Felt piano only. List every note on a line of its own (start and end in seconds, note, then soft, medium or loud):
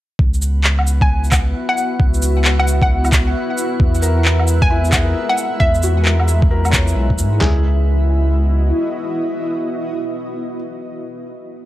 4.02 4.80 A#4 medium
4.70 5.48 E4 medium
4.90 5.59 G#4 medium
5.03 5.76 A#4 medium
5.83 6.61 F#4 medium
6.03 6.49 A#4 medium
6.51 7.29 A#4 medium
6.70 7.39 C#5 medium
7.41 10.54 G#4 medium